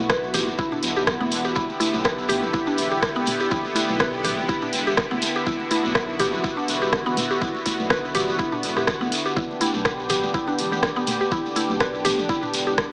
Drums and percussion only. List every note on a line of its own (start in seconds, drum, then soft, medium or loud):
0.10 kick loud
0.10 cross-stick loud
0.10 muted conga soft
0.10 shekere medium
0.23 shekere soft
0.34 mid tom medium
0.34 open hi-hat medium
0.34 high conga medium
0.34 low conga loud
0.34 shekere loud
0.47 muted conga soft
0.47 shekere soft
0.58 kick loud
0.58 shekere medium
0.71 mid tom medium
0.71 shekere soft
0.83 open hi-hat medium
0.83 muted conga soft
0.83 shekere medium
0.96 shekere soft
1.07 kick loud
1.07 cross-stick loud
1.07 shekere medium
1.21 high conga loud
1.21 shekere soft
1.31 open hi-hat medium
1.31 muted conga soft
1.31 shekere loud
1.45 shekere soft
1.55 kick loud
1.55 low conga medium
1.55 shekere medium
1.70 muted conga soft
1.70 shekere soft
1.80 open hi-hat medium
1.80 high conga medium
1.80 shekere medium
1.93 high conga medium
1.93 shekere soft
2.04 kick loud
2.04 cross-stick loud
2.04 muted conga soft
2.04 shekere medium
2.18 shekere soft
2.29 mid tom medium
2.29 open hi-hat medium
2.29 high conga medium
2.29 low conga medium
2.29 shekere medium
2.42 muted conga soft
2.42 shekere soft
2.54 kick loud
2.54 shekere soft
2.67 shekere soft
2.78 open hi-hat medium
2.78 muted conga soft
2.78 shekere medium
2.91 shekere soft
3.03 kick loud
3.03 cross-stick loud
3.03 shekere medium
3.15 shekere soft
3.26 mid tom medium
3.26 open hi-hat medium
3.26 muted conga soft
3.26 high conga medium
3.26 shekere loud
3.40 shekere soft
3.51 kick loud
3.51 low conga loud
3.51 shekere soft
3.65 muted conga medium
3.65 shekere soft
3.75 open hi-hat medium
3.75 high conga medium
3.75 shekere medium
3.88 high conga medium
3.88 shekere soft
4.00 kick loud
4.00 cross-stick loud
4.00 muted conga soft
4.00 shekere soft
4.13 shekere soft
4.24 mid tom medium
4.24 open hi-hat medium
4.24 high conga medium
4.24 low conga medium
4.24 shekere medium
4.37 muted conga soft
4.37 shekere soft
4.49 kick loud
4.49 shekere soft
4.61 mid tom medium
4.61 shekere soft
4.73 open hi-hat medium
4.73 muted conga soft
4.73 shekere medium
4.87 shekere soft
4.97 kick loud
4.97 cross-stick loud
4.97 shekere soft
5.12 high conga medium
5.12 shekere soft
5.22 open hi-hat medium
5.22 muted conga soft
5.22 shekere loud
5.35 shekere soft
5.46 kick loud
5.46 low conga medium
5.46 shekere medium
5.60 muted conga medium
5.60 shekere soft
5.71 open hi-hat medium
5.71 high conga medium
5.71 shekere medium
5.84 high conga medium
5.84 shekere soft
5.95 kick loud
5.95 cross-stick loud
5.95 shekere soft
6.09 shekere soft
6.19 mid tom medium
6.19 open hi-hat medium
6.19 high conga medium
6.19 low conga medium
6.19 shekere medium
6.33 muted conga medium
6.33 shekere soft
6.44 kick loud
6.44 shekere soft
6.58 shekere soft
6.68 open hi-hat medium
6.68 muted conga soft
6.68 shekere medium
6.83 shekere soft
6.93 kick loud
6.93 cross-stick loud
6.93 shekere medium
7.07 shekere soft
7.17 mid tom loud
7.17 open hi-hat medium
7.17 muted conga medium
7.17 high conga medium
7.17 shekere loud
7.31 shekere soft
7.41 kick loud
7.41 low conga loud
7.41 shekere medium
7.55 muted conga medium
7.55 shekere soft
7.66 kick medium
7.66 open hi-hat medium
7.66 high conga medium
7.66 shekere loud
7.80 high conga medium
7.80 shekere soft
7.90 kick loud
7.90 cross-stick loud
7.90 shekere medium
8.05 shekere soft
8.14 mid tom medium
8.14 open hi-hat medium
8.14 high conga medium
8.14 low conga loud
8.14 shekere loud
8.28 muted conga medium
8.28 shekere soft
8.39 kick loud
8.39 shekere medium
8.52 mid tom medium
8.52 shekere soft
8.63 open hi-hat medium
8.63 muted conga soft
8.63 shekere medium
8.77 cross-stick medium
8.77 mid tom medium
8.77 shekere soft
8.87 kick loud
8.87 cross-stick medium
8.87 shekere medium
9.00 high conga medium
9.00 shekere soft
9.12 open hi-hat medium
9.12 muted conga soft
9.12 shekere loud
9.26 shekere soft
9.37 kick loud
9.37 low conga loud
9.37 shekere medium
9.51 muted conga medium
9.51 shekere soft
9.61 open hi-hat medium
9.61 high conga medium
9.61 shekere loud
9.74 high conga medium
9.74 shekere soft
9.85 kick loud
9.85 cross-stick loud
9.85 shekere soft
9.99 shekere soft
10.09 mid tom medium
10.09 open hi-hat loud
10.09 low conga medium
10.09 shekere loud
10.23 muted conga medium
10.23 shekere soft
10.34 kick loud
10.34 shekere soft
10.48 shekere soft
10.58 open hi-hat loud
10.58 muted conga soft
10.58 shekere medium
10.72 high conga medium
10.72 shekere soft
10.83 kick loud
10.83 cross-stick loud
10.83 shekere medium
10.96 shekere soft
11.07 mid tom loud
11.07 open hi-hat loud
11.07 muted conga medium
11.07 high conga medium
11.07 shekere loud
11.21 shekere soft
11.32 kick loud
11.32 low conga medium
11.32 shekere medium
11.46 muted conga medium
11.46 shekere soft
11.56 open hi-hat medium
11.56 high conga medium
11.56 shekere medium
11.70 high conga medium
11.70 shekere soft
11.80 kick loud
11.80 cross-stick loud
11.80 shekere medium
11.94 shekere soft
12.05 mid tom medium
12.05 open hi-hat medium
12.05 high conga medium
12.05 low conga medium
12.05 shekere loud
12.19 muted conga medium
12.19 shekere soft
12.29 kick loud
12.29 shekere medium
12.43 mid tom medium
12.43 shekere soft
12.53 open hi-hat medium
12.53 muted conga soft
12.53 shekere medium
12.67 shekere soft
12.78 kick loud
12.78 cross-stick loud
12.78 shekere medium